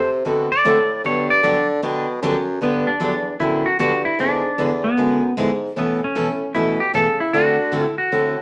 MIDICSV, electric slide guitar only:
0, 0, Header, 1, 2, 480
1, 0, Start_track
1, 0, Key_signature, 1, "major"
1, 0, Tempo, 393185
1, 1275, Time_signature, 4, 2, 24, 8
1, 10277, End_track
2, 0, Start_track
2, 0, Title_t, "Electric slide guitar"
2, 0, Program_c, 0, 29
2, 633, Note_on_c, 0, 74, 107
2, 1232, Note_off_c, 0, 74, 0
2, 1292, Note_on_c, 0, 73, 79
2, 1587, Note_off_c, 0, 73, 0
2, 1591, Note_on_c, 0, 74, 89
2, 2036, Note_off_c, 0, 74, 0
2, 3212, Note_on_c, 0, 59, 83
2, 3505, Note_on_c, 0, 62, 86
2, 3525, Note_off_c, 0, 59, 0
2, 4148, Note_off_c, 0, 62, 0
2, 4152, Note_on_c, 0, 64, 94
2, 4466, Note_on_c, 0, 66, 95
2, 4475, Note_off_c, 0, 64, 0
2, 4622, Note_off_c, 0, 66, 0
2, 4641, Note_on_c, 0, 66, 101
2, 4940, Note_off_c, 0, 66, 0
2, 4945, Note_on_c, 0, 64, 86
2, 5102, Note_off_c, 0, 64, 0
2, 5130, Note_on_c, 0, 62, 94
2, 5865, Note_off_c, 0, 62, 0
2, 5909, Note_on_c, 0, 59, 83
2, 6510, Note_off_c, 0, 59, 0
2, 7063, Note_on_c, 0, 59, 75
2, 7340, Note_off_c, 0, 59, 0
2, 7377, Note_on_c, 0, 61, 85
2, 7965, Note_off_c, 0, 61, 0
2, 7992, Note_on_c, 0, 64, 87
2, 8283, Note_off_c, 0, 64, 0
2, 8305, Note_on_c, 0, 67, 94
2, 8473, Note_off_c, 0, 67, 0
2, 8484, Note_on_c, 0, 69, 97
2, 8769, Note_off_c, 0, 69, 0
2, 8794, Note_on_c, 0, 64, 87
2, 8953, Note_on_c, 0, 66, 100
2, 8963, Note_off_c, 0, 64, 0
2, 9588, Note_off_c, 0, 66, 0
2, 9588, Note_on_c, 0, 64, 100
2, 9729, Note_off_c, 0, 64, 0
2, 9744, Note_on_c, 0, 66, 84
2, 10277, Note_off_c, 0, 66, 0
2, 10277, End_track
0, 0, End_of_file